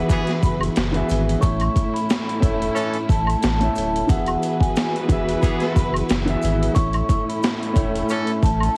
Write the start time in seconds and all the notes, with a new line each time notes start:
Already playing: E3 B3 E4 F#4 G#4 B4 E5
0.09 E3 B3 G#4, kick, closed hi-hat, maracas
0.27 snare, closed hi-hat
0.43 F#1 B5, kick, closed hi-hat, maracas
0.61 closed hi-hat, high woodblock
0.76 F#1, snare, closed hi-hat, maracas
0.92 E3 B3 F#4 G#4, closed hi-hat
0.96 E5
1.09 G#1, closed hi-hat, maracas
1.29 closed hi-hat
1.40 A1 A2 A3 C#4 E4 C#5 C#6, kick, closed hi-hat, maracas
1.44 E5
1.60 closed hi-hat, high woodblock
1.76 kick, closed hi-hat, maracas
1.94 B5, closed hi-hat
2.10 snare, closed hi-hat, maracas
2.29 closed hi-hat
2.40 E1 A2 A3 E4 C#5, kick, closed hi-hat, maracas
2.44 E5
2.62 closed hi-hat
2.75 E3 C#4 A4, closed hi-hat, maracas
2.94 closed hi-hat
3.09 A1 A5, kick, closed hi-hat, maracas
3.27 closed hi-hat, high woodblock
3.43 A1, snare, closed hi-hat, maracas
3.60 A2 A3 E4 C#5, closed hi-hat
3.64 E5
3.76 D1, closed hi-hat, maracas
3.96 closed hi-hat
4.07 E1 E3 B3 E4 F#4 G#4 B4 F#5, kick, closed hi-hat, maracas
4.11 E5
4.26 closed hi-hat, high woodblock
4.43 closed hi-hat, maracas
4.60 G#5, kick, closed hi-hat
4.76 snare, closed hi-hat, maracas
4.96 closed hi-hat
5.08 E1 E3 B3 F#4 G#4, kick, closed hi-hat, maracas
5.12 E5
5.29 closed hi-hat
5.42 E3 B3 G#4, kick, closed hi-hat, maracas
5.60 snare, closed hi-hat
5.76 F#1 B5, kick, closed hi-hat, maracas
5.94 closed hi-hat, high woodblock
6.09 F#1, snare, closed hi-hat, maracas
6.25 E3 B3 F#4 G#4, closed hi-hat
6.29 E5
6.42 G#1, closed hi-hat, maracas
6.63 closed hi-hat
6.73 A1 A2 A3 C#4 E4 C#5 C#6, kick, maracas
6.77 E5, closed hi-hat
6.93 closed hi-hat, high woodblock
7.09 kick, closed hi-hat, maracas
7.29 B5, closed hi-hat
7.43 snare, closed hi-hat, maracas
7.63 closed hi-hat
7.73 E1 A2 A3 E4 C#5, kick, closed hi-hat, maracas
7.77 E5
7.96 closed hi-hat
8.09 E3 C#4 A4, closed hi-hat, maracas
8.27 closed hi-hat
8.43 A1 A5, kick, closed hi-hat, maracas
8.60 closed hi-hat, high woodblock